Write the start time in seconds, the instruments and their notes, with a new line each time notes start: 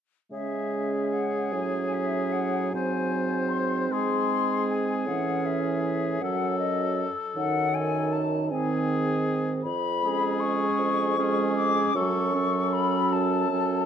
0.31 bassoon C#3, french horn G#3, clarinet C#4, oboe G#4, flute E5
1.13 flute F#5
1.53 bassoon A2, french horn F#3, clarinet C#4, flute G#5
1.93 flute E5
2.32 flute F#5
2.73 bassoon G#2, clarinet C4, oboe C5, flute G#5
3.49 flute C6
3.90 french horn G#3, oboe G#4, flute C6
4.69 flute G#5
5.07 bassoon A2, french horn E3, clarinet C#4, flute F#5
5.46 flute E5
5.84 flute E5
6.21 bassoon F#2, french horn F#3, clarinet C#4, oboe A4, flute F#5
6.59 flute D#5
7.36 bassoon F#2, french horn D#3, clarinet D#4, flute F#5
7.74 flute G#5
8.13 flute A5
8.50 bassoon G#2, french horn D#3, clarinet C4, oboe G#4, flute G#5
9.64 bassoon F2, flute B5
10.03 french horn G#3, clarinet C#4, oboe G#4
10.40 flute C#6
10.79 bassoon F2
11.17 french horn G#3, clarinet C#4, oboe G#4
11.56 flute D6
11.95 bassoon F#2, french horn F#3, clarinet C#4, oboe A4, flute C#6
12.33 french horn F#3, clarinet C#4, oboe A4
12.73 flute B5
13.12 bassoon F#2, flute A5
13.49 french horn F#3, clarinet C#4, oboe A4